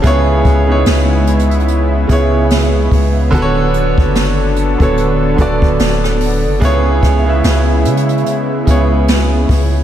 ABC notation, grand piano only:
X:1
M:4/4
L:1/16
Q:"Swing 16ths" 1/4=73
K:C#phr
V:1 name="Grand piano"
[C,B,EGc]3 [C,B,^DEGc]6 z [C,B,EGc]4- [C,B,EGc] z | [D,B,FABc]6 z [D,B,FAc]3 [D,B,FAd]4- [D,B,FAd] z | [C,B,EGc]3 [C,B,EGe]6 z [C,B,EGc]4- [C,B,EGc] z |]